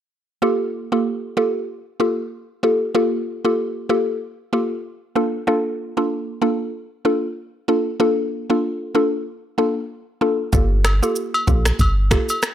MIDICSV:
0, 0, Header, 1, 4, 480
1, 0, Start_track
1, 0, Key_signature, -2, "minor"
1, 0, Tempo, 631579
1, 322, Time_signature, 4, 2, 24, 8
1, 9533, End_track
2, 0, Start_track
2, 0, Title_t, "Synth pluck"
2, 0, Program_c, 0, 84
2, 319, Note_on_c, 0, 58, 91
2, 321, Note_on_c, 0, 65, 86
2, 322, Note_on_c, 0, 67, 85
2, 324, Note_on_c, 0, 69, 100
2, 666, Note_off_c, 0, 58, 0
2, 668, Note_off_c, 0, 65, 0
2, 668, Note_off_c, 0, 67, 0
2, 669, Note_off_c, 0, 69, 0
2, 699, Note_on_c, 0, 58, 75
2, 701, Note_on_c, 0, 65, 66
2, 702, Note_on_c, 0, 67, 67
2, 704, Note_on_c, 0, 69, 80
2, 1017, Note_off_c, 0, 58, 0
2, 1018, Note_off_c, 0, 65, 0
2, 1018, Note_off_c, 0, 67, 0
2, 1019, Note_off_c, 0, 69, 0
2, 1040, Note_on_c, 0, 58, 81
2, 1041, Note_on_c, 0, 65, 73
2, 1043, Note_on_c, 0, 67, 73
2, 1045, Note_on_c, 0, 69, 88
2, 1265, Note_off_c, 0, 58, 0
2, 1265, Note_off_c, 0, 65, 0
2, 1267, Note_off_c, 0, 67, 0
2, 1267, Note_off_c, 0, 69, 0
2, 1518, Note_on_c, 0, 58, 76
2, 1520, Note_on_c, 0, 65, 71
2, 1522, Note_on_c, 0, 67, 72
2, 1523, Note_on_c, 0, 69, 84
2, 1685, Note_off_c, 0, 58, 0
2, 1686, Note_off_c, 0, 65, 0
2, 1687, Note_off_c, 0, 67, 0
2, 1688, Note_off_c, 0, 69, 0
2, 1999, Note_on_c, 0, 58, 79
2, 2001, Note_on_c, 0, 65, 70
2, 2002, Note_on_c, 0, 67, 68
2, 2004, Note_on_c, 0, 69, 85
2, 2165, Note_off_c, 0, 58, 0
2, 2166, Note_off_c, 0, 65, 0
2, 2167, Note_off_c, 0, 67, 0
2, 2168, Note_off_c, 0, 69, 0
2, 2239, Note_on_c, 0, 58, 90
2, 2240, Note_on_c, 0, 65, 85
2, 2242, Note_on_c, 0, 67, 83
2, 2243, Note_on_c, 0, 69, 97
2, 2586, Note_off_c, 0, 58, 0
2, 2587, Note_off_c, 0, 65, 0
2, 2588, Note_off_c, 0, 67, 0
2, 2589, Note_off_c, 0, 69, 0
2, 2619, Note_on_c, 0, 58, 74
2, 2619, Note_on_c, 0, 65, 71
2, 2621, Note_on_c, 0, 67, 70
2, 2623, Note_on_c, 0, 69, 81
2, 2937, Note_off_c, 0, 58, 0
2, 2937, Note_off_c, 0, 65, 0
2, 2938, Note_off_c, 0, 67, 0
2, 2939, Note_off_c, 0, 69, 0
2, 2959, Note_on_c, 0, 58, 82
2, 2960, Note_on_c, 0, 65, 74
2, 2962, Note_on_c, 0, 67, 73
2, 2963, Note_on_c, 0, 69, 89
2, 3185, Note_off_c, 0, 58, 0
2, 3185, Note_off_c, 0, 65, 0
2, 3186, Note_off_c, 0, 67, 0
2, 3187, Note_off_c, 0, 69, 0
2, 3440, Note_on_c, 0, 58, 73
2, 3441, Note_on_c, 0, 65, 71
2, 3443, Note_on_c, 0, 67, 71
2, 3445, Note_on_c, 0, 69, 85
2, 3606, Note_off_c, 0, 58, 0
2, 3607, Note_off_c, 0, 65, 0
2, 3608, Note_off_c, 0, 67, 0
2, 3608, Note_off_c, 0, 69, 0
2, 3918, Note_on_c, 0, 58, 78
2, 3919, Note_on_c, 0, 62, 68
2, 3921, Note_on_c, 0, 65, 71
2, 3923, Note_on_c, 0, 69, 84
2, 4085, Note_off_c, 0, 58, 0
2, 4086, Note_off_c, 0, 62, 0
2, 4086, Note_off_c, 0, 65, 0
2, 4087, Note_off_c, 0, 69, 0
2, 4158, Note_on_c, 0, 58, 94
2, 4161, Note_on_c, 0, 62, 83
2, 4162, Note_on_c, 0, 65, 83
2, 4163, Note_on_c, 0, 69, 102
2, 4506, Note_off_c, 0, 58, 0
2, 4507, Note_off_c, 0, 62, 0
2, 4508, Note_off_c, 0, 65, 0
2, 4509, Note_off_c, 0, 69, 0
2, 4537, Note_on_c, 0, 58, 73
2, 4539, Note_on_c, 0, 62, 68
2, 4540, Note_on_c, 0, 65, 66
2, 4542, Note_on_c, 0, 69, 78
2, 4856, Note_off_c, 0, 58, 0
2, 4857, Note_off_c, 0, 62, 0
2, 4857, Note_off_c, 0, 65, 0
2, 4858, Note_off_c, 0, 69, 0
2, 4876, Note_on_c, 0, 58, 79
2, 4878, Note_on_c, 0, 62, 75
2, 4879, Note_on_c, 0, 65, 74
2, 4881, Note_on_c, 0, 69, 86
2, 5103, Note_off_c, 0, 58, 0
2, 5104, Note_off_c, 0, 62, 0
2, 5105, Note_off_c, 0, 65, 0
2, 5106, Note_off_c, 0, 69, 0
2, 5357, Note_on_c, 0, 58, 79
2, 5358, Note_on_c, 0, 62, 70
2, 5359, Note_on_c, 0, 65, 69
2, 5361, Note_on_c, 0, 69, 88
2, 5524, Note_off_c, 0, 58, 0
2, 5525, Note_off_c, 0, 62, 0
2, 5526, Note_off_c, 0, 65, 0
2, 5526, Note_off_c, 0, 69, 0
2, 5838, Note_on_c, 0, 58, 77
2, 5840, Note_on_c, 0, 62, 71
2, 5840, Note_on_c, 0, 65, 73
2, 5842, Note_on_c, 0, 69, 85
2, 6005, Note_off_c, 0, 58, 0
2, 6006, Note_off_c, 0, 62, 0
2, 6006, Note_off_c, 0, 65, 0
2, 6007, Note_off_c, 0, 69, 0
2, 6077, Note_on_c, 0, 58, 93
2, 6079, Note_on_c, 0, 62, 88
2, 6080, Note_on_c, 0, 65, 81
2, 6082, Note_on_c, 0, 69, 99
2, 6426, Note_off_c, 0, 58, 0
2, 6426, Note_off_c, 0, 62, 0
2, 6427, Note_off_c, 0, 65, 0
2, 6428, Note_off_c, 0, 69, 0
2, 6457, Note_on_c, 0, 58, 74
2, 6459, Note_on_c, 0, 62, 67
2, 6461, Note_on_c, 0, 65, 70
2, 6462, Note_on_c, 0, 69, 80
2, 6776, Note_off_c, 0, 58, 0
2, 6777, Note_off_c, 0, 62, 0
2, 6778, Note_off_c, 0, 65, 0
2, 6778, Note_off_c, 0, 69, 0
2, 6799, Note_on_c, 0, 58, 80
2, 6800, Note_on_c, 0, 62, 72
2, 6802, Note_on_c, 0, 65, 70
2, 6804, Note_on_c, 0, 69, 89
2, 7025, Note_off_c, 0, 58, 0
2, 7025, Note_off_c, 0, 62, 0
2, 7026, Note_off_c, 0, 65, 0
2, 7027, Note_off_c, 0, 69, 0
2, 7279, Note_on_c, 0, 58, 78
2, 7282, Note_on_c, 0, 62, 70
2, 7283, Note_on_c, 0, 65, 70
2, 7284, Note_on_c, 0, 69, 86
2, 7446, Note_off_c, 0, 58, 0
2, 7447, Note_off_c, 0, 62, 0
2, 7447, Note_off_c, 0, 65, 0
2, 7448, Note_off_c, 0, 69, 0
2, 7760, Note_on_c, 0, 58, 79
2, 7761, Note_on_c, 0, 62, 74
2, 7764, Note_on_c, 0, 65, 69
2, 7765, Note_on_c, 0, 69, 84
2, 7926, Note_off_c, 0, 58, 0
2, 7926, Note_off_c, 0, 62, 0
2, 7928, Note_off_c, 0, 65, 0
2, 7929, Note_off_c, 0, 69, 0
2, 8000, Note_on_c, 0, 58, 91
2, 8001, Note_on_c, 0, 65, 87
2, 8002, Note_on_c, 0, 67, 84
2, 8005, Note_on_c, 0, 69, 99
2, 8347, Note_off_c, 0, 58, 0
2, 8348, Note_off_c, 0, 65, 0
2, 8348, Note_off_c, 0, 67, 0
2, 8349, Note_off_c, 0, 69, 0
2, 8378, Note_on_c, 0, 58, 74
2, 8380, Note_on_c, 0, 65, 66
2, 8381, Note_on_c, 0, 67, 67
2, 8382, Note_on_c, 0, 69, 83
2, 8697, Note_off_c, 0, 58, 0
2, 8697, Note_off_c, 0, 65, 0
2, 8698, Note_off_c, 0, 67, 0
2, 8699, Note_off_c, 0, 69, 0
2, 8719, Note_on_c, 0, 58, 78
2, 8720, Note_on_c, 0, 65, 76
2, 8722, Note_on_c, 0, 67, 72
2, 8723, Note_on_c, 0, 69, 92
2, 8945, Note_off_c, 0, 58, 0
2, 8945, Note_off_c, 0, 65, 0
2, 8946, Note_off_c, 0, 67, 0
2, 8947, Note_off_c, 0, 69, 0
2, 9201, Note_on_c, 0, 58, 76
2, 9202, Note_on_c, 0, 65, 69
2, 9204, Note_on_c, 0, 67, 73
2, 9205, Note_on_c, 0, 69, 83
2, 9366, Note_off_c, 0, 58, 0
2, 9367, Note_off_c, 0, 65, 0
2, 9368, Note_off_c, 0, 67, 0
2, 9368, Note_off_c, 0, 69, 0
2, 9533, End_track
3, 0, Start_track
3, 0, Title_t, "Sub bass"
3, 0, Program_c, 1, 38
3, 8002, Note_on_c, 1, 31, 108
3, 8370, Note_off_c, 1, 31, 0
3, 8723, Note_on_c, 1, 34, 90
3, 8907, Note_off_c, 1, 34, 0
3, 8964, Note_on_c, 1, 31, 102
3, 9254, Note_off_c, 1, 31, 0
3, 9533, End_track
4, 0, Start_track
4, 0, Title_t, "Drums"
4, 8001, Note_on_c, 9, 82, 69
4, 8002, Note_on_c, 9, 36, 117
4, 8077, Note_off_c, 9, 82, 0
4, 8078, Note_off_c, 9, 36, 0
4, 8242, Note_on_c, 9, 26, 73
4, 8243, Note_on_c, 9, 37, 86
4, 8244, Note_on_c, 9, 82, 51
4, 8246, Note_on_c, 9, 67, 64
4, 8318, Note_off_c, 9, 26, 0
4, 8319, Note_off_c, 9, 37, 0
4, 8320, Note_off_c, 9, 82, 0
4, 8322, Note_off_c, 9, 67, 0
4, 8382, Note_on_c, 9, 82, 69
4, 8458, Note_off_c, 9, 82, 0
4, 8479, Note_on_c, 9, 82, 63
4, 8555, Note_off_c, 9, 82, 0
4, 8621, Note_on_c, 9, 67, 80
4, 8697, Note_off_c, 9, 67, 0
4, 8720, Note_on_c, 9, 82, 55
4, 8723, Note_on_c, 9, 36, 94
4, 8796, Note_off_c, 9, 82, 0
4, 8799, Note_off_c, 9, 36, 0
4, 8857, Note_on_c, 9, 26, 75
4, 8858, Note_on_c, 9, 37, 98
4, 8861, Note_on_c, 9, 82, 77
4, 8933, Note_off_c, 9, 26, 0
4, 8934, Note_off_c, 9, 37, 0
4, 8937, Note_off_c, 9, 82, 0
4, 8963, Note_on_c, 9, 82, 77
4, 8964, Note_on_c, 9, 36, 89
4, 8974, Note_on_c, 9, 67, 77
4, 9039, Note_off_c, 9, 82, 0
4, 9040, Note_off_c, 9, 36, 0
4, 9050, Note_off_c, 9, 67, 0
4, 9203, Note_on_c, 9, 36, 90
4, 9204, Note_on_c, 9, 26, 64
4, 9204, Note_on_c, 9, 82, 47
4, 9205, Note_on_c, 9, 37, 82
4, 9279, Note_off_c, 9, 36, 0
4, 9280, Note_off_c, 9, 26, 0
4, 9280, Note_off_c, 9, 82, 0
4, 9281, Note_off_c, 9, 37, 0
4, 9339, Note_on_c, 9, 82, 75
4, 9349, Note_on_c, 9, 67, 75
4, 9415, Note_off_c, 9, 82, 0
4, 9425, Note_off_c, 9, 67, 0
4, 9441, Note_on_c, 9, 82, 73
4, 9445, Note_on_c, 9, 26, 68
4, 9445, Note_on_c, 9, 37, 88
4, 9517, Note_off_c, 9, 82, 0
4, 9521, Note_off_c, 9, 26, 0
4, 9521, Note_off_c, 9, 37, 0
4, 9533, End_track
0, 0, End_of_file